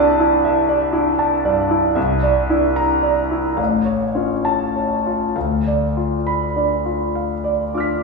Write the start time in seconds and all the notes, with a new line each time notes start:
Already playing: C2 D4 E4 D5 E5 A5
0.20 E4
0.45 E5
0.69 D5
0.93 D4 E4
1.19 A5
1.45 G2 D5
1.70 E4
1.95 C2 E5
2.23 D5
2.50 D4 E4
2.76 A#5
3.02 D5
3.31 E4
3.57 A1 F5
3.85 C#5
4.15 C#4 F4
4.45 A5
4.76 C#5
5.06 F4
5.36 D2 F5
5.67 D5
5.97 F4
6.27 B5
6.56 D4 D5
6.85 F4
7.15 F5
7.44 D5
7.74 D4 F4 D6 F6
7.80 B6